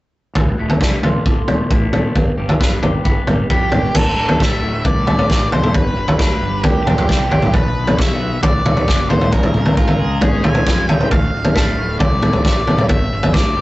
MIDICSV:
0, 0, Header, 1, 5, 480
1, 0, Start_track
1, 0, Tempo, 447761
1, 386, Time_signature, 4, 2, 24, 8
1, 14592, End_track
2, 0, Start_track
2, 0, Title_t, "Lead electric guitar"
2, 0, Program_c, 0, 29
2, 3772, Note_on_c, 0, 67, 73
2, 4251, Note_on_c, 0, 69, 65
2, 4256, Note_off_c, 0, 67, 0
2, 4736, Note_off_c, 0, 69, 0
2, 4740, Note_on_c, 0, 76, 68
2, 5206, Note_off_c, 0, 76, 0
2, 5210, Note_on_c, 0, 74, 72
2, 5879, Note_off_c, 0, 74, 0
2, 5926, Note_on_c, 0, 72, 69
2, 6158, Note_off_c, 0, 72, 0
2, 6163, Note_on_c, 0, 71, 67
2, 6605, Note_off_c, 0, 71, 0
2, 6635, Note_on_c, 0, 71, 74
2, 7081, Note_off_c, 0, 71, 0
2, 7124, Note_on_c, 0, 67, 75
2, 7595, Note_off_c, 0, 67, 0
2, 7608, Note_on_c, 0, 67, 77
2, 8095, Note_on_c, 0, 71, 79
2, 8096, Note_off_c, 0, 67, 0
2, 8567, Note_on_c, 0, 76, 84
2, 8579, Note_off_c, 0, 71, 0
2, 9030, Note_off_c, 0, 76, 0
2, 9034, Note_on_c, 0, 74, 78
2, 9753, Note_on_c, 0, 72, 88
2, 9776, Note_off_c, 0, 74, 0
2, 10001, Note_off_c, 0, 72, 0
2, 10008, Note_on_c, 0, 70, 68
2, 10447, Note_off_c, 0, 70, 0
2, 10476, Note_on_c, 0, 70, 82
2, 10968, Note_off_c, 0, 70, 0
2, 10977, Note_on_c, 0, 68, 74
2, 11188, Note_on_c, 0, 80, 91
2, 11211, Note_off_c, 0, 68, 0
2, 11670, Note_off_c, 0, 80, 0
2, 11670, Note_on_c, 0, 79, 91
2, 11865, Note_off_c, 0, 79, 0
2, 11912, Note_on_c, 0, 77, 70
2, 12379, Note_off_c, 0, 77, 0
2, 12392, Note_on_c, 0, 77, 90
2, 12836, Note_off_c, 0, 77, 0
2, 12857, Note_on_c, 0, 74, 74
2, 13323, Note_off_c, 0, 74, 0
2, 13335, Note_on_c, 0, 74, 77
2, 13810, Note_off_c, 0, 74, 0
2, 13814, Note_on_c, 0, 76, 77
2, 14291, Note_on_c, 0, 74, 86
2, 14313, Note_off_c, 0, 76, 0
2, 14592, Note_off_c, 0, 74, 0
2, 14592, End_track
3, 0, Start_track
3, 0, Title_t, "Clean electric guitar"
3, 0, Program_c, 1, 27
3, 382, Note_on_c, 1, 38, 63
3, 638, Note_on_c, 1, 45, 57
3, 867, Note_on_c, 1, 50, 67
3, 1118, Note_on_c, 1, 65, 70
3, 1328, Note_off_c, 1, 50, 0
3, 1341, Note_on_c, 1, 50, 61
3, 1570, Note_off_c, 1, 45, 0
3, 1583, Note_on_c, 1, 45, 65
3, 1587, Note_off_c, 1, 38, 0
3, 1821, Note_off_c, 1, 50, 0
3, 1834, Note_on_c, 1, 50, 67
3, 2067, Note_on_c, 1, 57, 55
3, 2302, Note_on_c, 1, 43, 63
3, 2308, Note_off_c, 1, 45, 0
3, 2309, Note_off_c, 1, 57, 0
3, 2313, Note_off_c, 1, 50, 0
3, 2315, Note_off_c, 1, 65, 0
3, 2548, Note_on_c, 1, 55, 62
3, 2784, Note_on_c, 1, 59, 67
3, 3024, Note_on_c, 1, 67, 65
3, 3248, Note_off_c, 1, 59, 0
3, 3261, Note_on_c, 1, 59, 56
3, 3500, Note_off_c, 1, 55, 0
3, 3508, Note_off_c, 1, 43, 0
3, 3513, Note_on_c, 1, 55, 58
3, 3738, Note_off_c, 1, 59, 0
3, 3751, Note_on_c, 1, 59, 66
3, 3995, Note_on_c, 1, 62, 50
3, 4229, Note_off_c, 1, 67, 0
3, 4231, Note_on_c, 1, 38, 63
3, 4232, Note_off_c, 1, 59, 0
3, 4233, Note_off_c, 1, 55, 0
3, 4234, Note_off_c, 1, 62, 0
3, 4711, Note_on_c, 1, 57, 71
3, 4953, Note_on_c, 1, 45, 64
3, 5201, Note_on_c, 1, 50, 60
3, 5425, Note_off_c, 1, 57, 0
3, 5433, Note_off_c, 1, 38, 0
3, 5438, Note_on_c, 1, 57, 66
3, 5658, Note_off_c, 1, 45, 0
3, 5671, Note_on_c, 1, 45, 61
3, 5899, Note_off_c, 1, 57, 0
3, 5912, Note_on_c, 1, 57, 51
3, 6147, Note_on_c, 1, 43, 72
3, 6152, Note_off_c, 1, 45, 0
3, 6153, Note_off_c, 1, 57, 0
3, 6158, Note_off_c, 1, 50, 0
3, 6634, Note_on_c, 1, 62, 66
3, 6874, Note_on_c, 1, 55, 62
3, 7107, Note_on_c, 1, 59, 59
3, 7332, Note_off_c, 1, 62, 0
3, 7345, Note_on_c, 1, 62, 67
3, 7351, Note_off_c, 1, 43, 0
3, 7569, Note_off_c, 1, 55, 0
3, 7582, Note_on_c, 1, 55, 64
3, 7817, Note_off_c, 1, 62, 0
3, 7830, Note_on_c, 1, 62, 56
3, 8062, Note_on_c, 1, 47, 68
3, 8068, Note_off_c, 1, 55, 0
3, 8071, Note_off_c, 1, 59, 0
3, 8072, Note_off_c, 1, 62, 0
3, 8545, Note_on_c, 1, 66, 69
3, 8793, Note_on_c, 1, 59, 67
3, 9030, Note_on_c, 1, 62, 54
3, 9261, Note_off_c, 1, 66, 0
3, 9268, Note_off_c, 1, 47, 0
3, 9274, Note_on_c, 1, 66, 64
3, 9507, Note_off_c, 1, 59, 0
3, 9520, Note_on_c, 1, 59, 56
3, 9737, Note_off_c, 1, 66, 0
3, 9750, Note_on_c, 1, 66, 55
3, 9992, Note_off_c, 1, 62, 0
3, 9992, Note_off_c, 1, 66, 0
3, 9997, Note_off_c, 1, 59, 0
3, 10010, Note_on_c, 1, 49, 62
3, 10478, Note_on_c, 1, 65, 77
3, 10714, Note_on_c, 1, 56, 73
3, 10947, Note_on_c, 1, 61, 64
3, 11175, Note_off_c, 1, 65, 0
3, 11188, Note_on_c, 1, 65, 71
3, 11200, Note_off_c, 1, 49, 0
3, 11411, Note_off_c, 1, 56, 0
3, 11423, Note_on_c, 1, 56, 60
3, 11656, Note_off_c, 1, 65, 0
3, 11669, Note_on_c, 1, 65, 51
3, 11907, Note_off_c, 1, 56, 0
3, 11908, Note_off_c, 1, 61, 0
3, 11909, Note_off_c, 1, 65, 0
3, 11909, Note_on_c, 1, 38, 71
3, 12384, Note_on_c, 1, 57, 71
3, 12628, Note_on_c, 1, 45, 63
3, 12864, Note_on_c, 1, 50, 55
3, 13093, Note_off_c, 1, 57, 0
3, 13106, Note_off_c, 1, 38, 0
3, 13106, Note_on_c, 1, 57, 68
3, 13331, Note_off_c, 1, 45, 0
3, 13344, Note_on_c, 1, 45, 67
3, 13569, Note_off_c, 1, 57, 0
3, 13582, Note_on_c, 1, 57, 57
3, 13818, Note_on_c, 1, 43, 63
3, 13823, Note_off_c, 1, 45, 0
3, 13823, Note_off_c, 1, 50, 0
3, 13823, Note_off_c, 1, 57, 0
3, 14301, Note_on_c, 1, 62, 65
3, 14540, Note_on_c, 1, 55, 67
3, 14592, Note_off_c, 1, 43, 0
3, 14592, Note_off_c, 1, 55, 0
3, 14592, Note_off_c, 1, 62, 0
3, 14592, End_track
4, 0, Start_track
4, 0, Title_t, "Fingered electric bass"
4, 0, Program_c, 2, 33
4, 382, Note_on_c, 2, 26, 97
4, 545, Note_off_c, 2, 26, 0
4, 621, Note_on_c, 2, 26, 73
4, 784, Note_off_c, 2, 26, 0
4, 865, Note_on_c, 2, 36, 78
4, 1027, Note_off_c, 2, 36, 0
4, 1102, Note_on_c, 2, 36, 77
4, 1266, Note_off_c, 2, 36, 0
4, 1346, Note_on_c, 2, 26, 72
4, 1509, Note_off_c, 2, 26, 0
4, 1584, Note_on_c, 2, 26, 76
4, 1747, Note_off_c, 2, 26, 0
4, 1832, Note_on_c, 2, 33, 86
4, 1993, Note_off_c, 2, 33, 0
4, 2065, Note_on_c, 2, 38, 91
4, 2228, Note_off_c, 2, 38, 0
4, 2312, Note_on_c, 2, 31, 86
4, 2473, Note_off_c, 2, 31, 0
4, 2549, Note_on_c, 2, 31, 73
4, 2711, Note_off_c, 2, 31, 0
4, 2794, Note_on_c, 2, 31, 88
4, 2954, Note_off_c, 2, 31, 0
4, 3032, Note_on_c, 2, 31, 77
4, 3193, Note_off_c, 2, 31, 0
4, 3276, Note_on_c, 2, 31, 73
4, 3436, Note_off_c, 2, 31, 0
4, 3513, Note_on_c, 2, 31, 81
4, 3674, Note_off_c, 2, 31, 0
4, 3754, Note_on_c, 2, 41, 84
4, 3915, Note_off_c, 2, 41, 0
4, 3994, Note_on_c, 2, 31, 82
4, 4155, Note_off_c, 2, 31, 0
4, 4236, Note_on_c, 2, 26, 91
4, 4447, Note_off_c, 2, 26, 0
4, 4478, Note_on_c, 2, 26, 75
4, 4689, Note_off_c, 2, 26, 0
4, 4725, Note_on_c, 2, 26, 78
4, 5145, Note_off_c, 2, 26, 0
4, 5202, Note_on_c, 2, 36, 75
4, 5411, Note_off_c, 2, 36, 0
4, 5436, Note_on_c, 2, 26, 78
4, 5647, Note_off_c, 2, 26, 0
4, 5676, Note_on_c, 2, 33, 77
4, 5888, Note_off_c, 2, 33, 0
4, 5921, Note_on_c, 2, 36, 91
4, 6131, Note_off_c, 2, 36, 0
4, 6159, Note_on_c, 2, 31, 94
4, 6369, Note_off_c, 2, 31, 0
4, 6387, Note_on_c, 2, 31, 71
4, 6603, Note_off_c, 2, 31, 0
4, 6638, Note_on_c, 2, 38, 79
4, 6849, Note_off_c, 2, 38, 0
4, 6875, Note_on_c, 2, 31, 77
4, 7087, Note_off_c, 2, 31, 0
4, 7117, Note_on_c, 2, 38, 89
4, 7329, Note_off_c, 2, 38, 0
4, 7348, Note_on_c, 2, 41, 83
4, 7563, Note_off_c, 2, 41, 0
4, 7606, Note_on_c, 2, 36, 80
4, 7813, Note_off_c, 2, 36, 0
4, 7838, Note_on_c, 2, 31, 87
4, 8049, Note_off_c, 2, 31, 0
4, 8080, Note_on_c, 2, 35, 99
4, 8290, Note_off_c, 2, 35, 0
4, 8304, Note_on_c, 2, 35, 79
4, 8521, Note_off_c, 2, 35, 0
4, 8566, Note_on_c, 2, 35, 89
4, 8986, Note_off_c, 2, 35, 0
4, 9043, Note_on_c, 2, 33, 78
4, 9252, Note_off_c, 2, 33, 0
4, 9275, Note_on_c, 2, 35, 83
4, 9487, Note_off_c, 2, 35, 0
4, 9519, Note_on_c, 2, 30, 77
4, 9729, Note_off_c, 2, 30, 0
4, 9761, Note_on_c, 2, 45, 93
4, 9970, Note_off_c, 2, 45, 0
4, 10002, Note_on_c, 2, 37, 91
4, 10211, Note_off_c, 2, 37, 0
4, 10242, Note_on_c, 2, 37, 83
4, 10450, Note_off_c, 2, 37, 0
4, 10479, Note_on_c, 2, 44, 81
4, 10689, Note_off_c, 2, 44, 0
4, 10714, Note_on_c, 2, 37, 87
4, 10926, Note_off_c, 2, 37, 0
4, 10957, Note_on_c, 2, 44, 78
4, 11167, Note_off_c, 2, 44, 0
4, 11192, Note_on_c, 2, 46, 76
4, 11404, Note_off_c, 2, 46, 0
4, 11438, Note_on_c, 2, 41, 83
4, 11648, Note_off_c, 2, 41, 0
4, 11674, Note_on_c, 2, 37, 83
4, 11885, Note_off_c, 2, 37, 0
4, 11916, Note_on_c, 2, 26, 87
4, 12126, Note_off_c, 2, 26, 0
4, 12160, Note_on_c, 2, 26, 66
4, 12368, Note_off_c, 2, 26, 0
4, 12392, Note_on_c, 2, 26, 79
4, 12815, Note_off_c, 2, 26, 0
4, 12868, Note_on_c, 2, 36, 88
4, 13080, Note_off_c, 2, 36, 0
4, 13101, Note_on_c, 2, 26, 82
4, 13316, Note_off_c, 2, 26, 0
4, 13343, Note_on_c, 2, 33, 75
4, 13557, Note_off_c, 2, 33, 0
4, 13585, Note_on_c, 2, 36, 85
4, 13797, Note_off_c, 2, 36, 0
4, 13827, Note_on_c, 2, 31, 95
4, 14038, Note_off_c, 2, 31, 0
4, 14066, Note_on_c, 2, 31, 78
4, 14277, Note_off_c, 2, 31, 0
4, 14304, Note_on_c, 2, 38, 79
4, 14516, Note_off_c, 2, 38, 0
4, 14547, Note_on_c, 2, 31, 77
4, 14592, Note_off_c, 2, 31, 0
4, 14592, End_track
5, 0, Start_track
5, 0, Title_t, "Drums"
5, 379, Note_on_c, 9, 43, 71
5, 382, Note_on_c, 9, 36, 91
5, 486, Note_off_c, 9, 43, 0
5, 489, Note_off_c, 9, 36, 0
5, 748, Note_on_c, 9, 43, 69
5, 855, Note_off_c, 9, 43, 0
5, 865, Note_on_c, 9, 36, 91
5, 882, Note_on_c, 9, 38, 71
5, 972, Note_off_c, 9, 36, 0
5, 989, Note_off_c, 9, 38, 0
5, 1108, Note_on_c, 9, 43, 72
5, 1215, Note_off_c, 9, 43, 0
5, 1348, Note_on_c, 9, 36, 82
5, 1455, Note_off_c, 9, 36, 0
5, 1586, Note_on_c, 9, 43, 72
5, 1586, Note_on_c, 9, 47, 68
5, 1693, Note_off_c, 9, 43, 0
5, 1693, Note_off_c, 9, 47, 0
5, 1829, Note_on_c, 9, 36, 103
5, 1936, Note_off_c, 9, 36, 0
5, 2069, Note_on_c, 9, 43, 71
5, 2069, Note_on_c, 9, 47, 64
5, 2176, Note_off_c, 9, 43, 0
5, 2176, Note_off_c, 9, 47, 0
5, 2310, Note_on_c, 9, 43, 74
5, 2312, Note_on_c, 9, 36, 82
5, 2417, Note_off_c, 9, 43, 0
5, 2419, Note_off_c, 9, 36, 0
5, 2669, Note_on_c, 9, 43, 73
5, 2776, Note_off_c, 9, 43, 0
5, 2795, Note_on_c, 9, 36, 97
5, 2810, Note_on_c, 9, 38, 68
5, 2902, Note_off_c, 9, 36, 0
5, 2918, Note_off_c, 9, 38, 0
5, 3031, Note_on_c, 9, 43, 80
5, 3138, Note_off_c, 9, 43, 0
5, 3272, Note_on_c, 9, 36, 82
5, 3379, Note_off_c, 9, 36, 0
5, 3509, Note_on_c, 9, 43, 76
5, 3509, Note_on_c, 9, 47, 68
5, 3616, Note_off_c, 9, 43, 0
5, 3616, Note_off_c, 9, 47, 0
5, 3753, Note_on_c, 9, 36, 95
5, 3860, Note_off_c, 9, 36, 0
5, 3986, Note_on_c, 9, 43, 74
5, 3986, Note_on_c, 9, 47, 65
5, 4093, Note_off_c, 9, 43, 0
5, 4093, Note_off_c, 9, 47, 0
5, 4230, Note_on_c, 9, 43, 76
5, 4230, Note_on_c, 9, 49, 83
5, 4235, Note_on_c, 9, 36, 96
5, 4338, Note_off_c, 9, 43, 0
5, 4338, Note_off_c, 9, 49, 0
5, 4342, Note_off_c, 9, 36, 0
5, 4596, Note_on_c, 9, 43, 75
5, 4703, Note_off_c, 9, 43, 0
5, 4720, Note_on_c, 9, 36, 96
5, 4740, Note_on_c, 9, 38, 73
5, 4827, Note_off_c, 9, 36, 0
5, 4847, Note_off_c, 9, 38, 0
5, 5198, Note_on_c, 9, 43, 67
5, 5199, Note_on_c, 9, 36, 90
5, 5306, Note_off_c, 9, 36, 0
5, 5306, Note_off_c, 9, 43, 0
5, 5438, Note_on_c, 9, 43, 72
5, 5438, Note_on_c, 9, 47, 76
5, 5545, Note_off_c, 9, 43, 0
5, 5545, Note_off_c, 9, 47, 0
5, 5562, Note_on_c, 9, 43, 78
5, 5669, Note_off_c, 9, 43, 0
5, 5679, Note_on_c, 9, 36, 89
5, 5691, Note_on_c, 9, 38, 65
5, 5786, Note_off_c, 9, 36, 0
5, 5799, Note_off_c, 9, 38, 0
5, 5921, Note_on_c, 9, 43, 80
5, 6028, Note_off_c, 9, 43, 0
5, 6040, Note_on_c, 9, 43, 61
5, 6040, Note_on_c, 9, 47, 68
5, 6147, Note_off_c, 9, 43, 0
5, 6147, Note_off_c, 9, 47, 0
5, 6158, Note_on_c, 9, 36, 94
5, 6161, Note_on_c, 9, 43, 81
5, 6265, Note_off_c, 9, 36, 0
5, 6269, Note_off_c, 9, 43, 0
5, 6518, Note_on_c, 9, 43, 83
5, 6625, Note_off_c, 9, 43, 0
5, 6638, Note_on_c, 9, 36, 107
5, 6652, Note_on_c, 9, 38, 71
5, 6745, Note_off_c, 9, 36, 0
5, 6760, Note_off_c, 9, 38, 0
5, 7113, Note_on_c, 9, 43, 68
5, 7117, Note_on_c, 9, 36, 95
5, 7220, Note_off_c, 9, 43, 0
5, 7224, Note_off_c, 9, 36, 0
5, 7365, Note_on_c, 9, 43, 82
5, 7365, Note_on_c, 9, 47, 71
5, 7472, Note_off_c, 9, 43, 0
5, 7472, Note_off_c, 9, 47, 0
5, 7483, Note_on_c, 9, 43, 86
5, 7591, Note_off_c, 9, 43, 0
5, 7600, Note_on_c, 9, 36, 91
5, 7618, Note_on_c, 9, 38, 71
5, 7707, Note_off_c, 9, 36, 0
5, 7725, Note_off_c, 9, 38, 0
5, 7841, Note_on_c, 9, 43, 79
5, 7949, Note_off_c, 9, 43, 0
5, 7957, Note_on_c, 9, 43, 67
5, 7957, Note_on_c, 9, 47, 76
5, 8064, Note_off_c, 9, 43, 0
5, 8064, Note_off_c, 9, 47, 0
5, 8079, Note_on_c, 9, 36, 90
5, 8080, Note_on_c, 9, 43, 72
5, 8186, Note_off_c, 9, 36, 0
5, 8187, Note_off_c, 9, 43, 0
5, 8441, Note_on_c, 9, 43, 75
5, 8548, Note_off_c, 9, 43, 0
5, 8561, Note_on_c, 9, 36, 91
5, 8577, Note_on_c, 9, 38, 66
5, 8668, Note_off_c, 9, 36, 0
5, 8684, Note_off_c, 9, 38, 0
5, 9035, Note_on_c, 9, 43, 75
5, 9040, Note_on_c, 9, 36, 105
5, 9142, Note_off_c, 9, 43, 0
5, 9147, Note_off_c, 9, 36, 0
5, 9279, Note_on_c, 9, 43, 77
5, 9279, Note_on_c, 9, 47, 72
5, 9387, Note_off_c, 9, 43, 0
5, 9387, Note_off_c, 9, 47, 0
5, 9400, Note_on_c, 9, 43, 87
5, 9507, Note_off_c, 9, 43, 0
5, 9518, Note_on_c, 9, 36, 93
5, 9528, Note_on_c, 9, 38, 69
5, 9625, Note_off_c, 9, 36, 0
5, 9635, Note_off_c, 9, 38, 0
5, 9756, Note_on_c, 9, 43, 76
5, 9863, Note_off_c, 9, 43, 0
5, 9876, Note_on_c, 9, 43, 61
5, 9876, Note_on_c, 9, 47, 65
5, 9983, Note_off_c, 9, 43, 0
5, 9983, Note_off_c, 9, 47, 0
5, 9992, Note_on_c, 9, 43, 64
5, 9998, Note_on_c, 9, 36, 90
5, 10099, Note_off_c, 9, 43, 0
5, 10105, Note_off_c, 9, 36, 0
5, 10111, Note_on_c, 9, 43, 64
5, 10111, Note_on_c, 9, 47, 61
5, 10218, Note_off_c, 9, 43, 0
5, 10218, Note_off_c, 9, 47, 0
5, 10226, Note_on_c, 9, 47, 64
5, 10333, Note_off_c, 9, 47, 0
5, 10351, Note_on_c, 9, 43, 72
5, 10458, Note_off_c, 9, 43, 0
5, 10477, Note_on_c, 9, 36, 99
5, 10584, Note_off_c, 9, 36, 0
5, 10588, Note_on_c, 9, 43, 71
5, 10695, Note_off_c, 9, 43, 0
5, 10949, Note_on_c, 9, 43, 78
5, 10955, Note_on_c, 9, 36, 103
5, 11056, Note_off_c, 9, 43, 0
5, 11062, Note_off_c, 9, 36, 0
5, 11192, Note_on_c, 9, 43, 77
5, 11299, Note_off_c, 9, 43, 0
5, 11306, Note_on_c, 9, 43, 84
5, 11414, Note_off_c, 9, 43, 0
5, 11434, Note_on_c, 9, 36, 98
5, 11445, Note_on_c, 9, 38, 71
5, 11541, Note_off_c, 9, 36, 0
5, 11553, Note_off_c, 9, 38, 0
5, 11673, Note_on_c, 9, 43, 83
5, 11781, Note_off_c, 9, 43, 0
5, 11798, Note_on_c, 9, 43, 67
5, 11905, Note_off_c, 9, 43, 0
5, 11913, Note_on_c, 9, 36, 88
5, 11914, Note_on_c, 9, 43, 72
5, 12020, Note_off_c, 9, 36, 0
5, 12021, Note_off_c, 9, 43, 0
5, 12270, Note_on_c, 9, 43, 79
5, 12378, Note_off_c, 9, 43, 0
5, 12389, Note_on_c, 9, 36, 88
5, 12398, Note_on_c, 9, 38, 70
5, 12496, Note_off_c, 9, 36, 0
5, 12505, Note_off_c, 9, 38, 0
5, 12866, Note_on_c, 9, 43, 71
5, 12869, Note_on_c, 9, 36, 92
5, 12973, Note_off_c, 9, 43, 0
5, 12976, Note_off_c, 9, 36, 0
5, 13105, Note_on_c, 9, 43, 68
5, 13105, Note_on_c, 9, 47, 76
5, 13213, Note_off_c, 9, 43, 0
5, 13213, Note_off_c, 9, 47, 0
5, 13220, Note_on_c, 9, 43, 81
5, 13327, Note_off_c, 9, 43, 0
5, 13344, Note_on_c, 9, 36, 97
5, 13357, Note_on_c, 9, 38, 74
5, 13452, Note_off_c, 9, 36, 0
5, 13465, Note_off_c, 9, 38, 0
5, 13586, Note_on_c, 9, 43, 65
5, 13693, Note_off_c, 9, 43, 0
5, 13703, Note_on_c, 9, 43, 67
5, 13703, Note_on_c, 9, 47, 70
5, 13810, Note_off_c, 9, 43, 0
5, 13810, Note_off_c, 9, 47, 0
5, 13821, Note_on_c, 9, 43, 72
5, 13823, Note_on_c, 9, 36, 97
5, 13928, Note_off_c, 9, 43, 0
5, 13930, Note_off_c, 9, 36, 0
5, 14184, Note_on_c, 9, 43, 74
5, 14291, Note_off_c, 9, 43, 0
5, 14301, Note_on_c, 9, 36, 95
5, 14315, Note_on_c, 9, 38, 64
5, 14408, Note_off_c, 9, 36, 0
5, 14422, Note_off_c, 9, 38, 0
5, 14592, End_track
0, 0, End_of_file